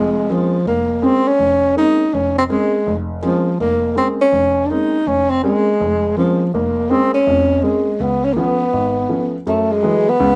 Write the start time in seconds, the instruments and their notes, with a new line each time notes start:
Already playing: grand piano F1 F2, tenor saxophone G#3
0.30 tenor saxophone F3, grand piano G#3 A#3 C4 C#4
0.66 grand piano F1, tenor saxophone A#3
1.02 grand piano G#3 A#3 C4 C#4, tenor saxophone C4
1.28 tenor saxophone C#4
1.39 grand piano F1
1.76 grand piano G#3 A#3 C4 C#4, tenor saxophone D#4
2.14 grand piano F1, tenor saxophone C#4
2.38 tenor saxophone C4
2.49 grand piano G#3 A#3 C4 C#4, tenor saxophone G#3
2.87 grand piano F1
3.22 tenor saxophone F3, grand piano G#3 A#3 C4 C#4
3.60 grand piano F1, tenor saxophone A#3
3.96 grand piano G#3 A#3 C4 C#4, tenor saxophone C4
4.21 tenor saxophone C#4
4.32 grand piano F1
4.66 tenor saxophone D4
4.70 grand piano G#3 A#3 C4 C#4, tenor saxophone D#4
5.07 grand piano F1, tenor saxophone C#4
5.30 tenor saxophone C4
5.43 grand piano G#3 A#3 C4 C#4, tenor saxophone G#3
5.80 grand piano F1
6.17 tenor saxophone F3, grand piano G#3 A#3 C4 C#4
6.54 grand piano F1, tenor saxophone A#3
6.90 grand piano G#3 A#3 C4 C#4, tenor saxophone C4
7.14 tenor saxophone C#4
7.27 grand piano F1 F2
7.63 grand piano G#3 A#3 C4 C#4, tenor saxophone G#3
8.00 grand piano C#2, tenor saxophone B3
8.25 tenor saxophone C#4
8.33 grand piano F3 A3 B3 C#4, tenor saxophone A#3
8.38 tenor saxophone B3
8.73 grand piano G#1
9.09 grand piano F3 A3 B3 C#4
9.47 grand piano F#2, tenor saxophone A3
9.72 tenor saxophone G#3
9.83 grand piano E3 F#3 G#3 A3 B3
10.09 tenor saxophone B3
10.20 grand piano C#2 C#3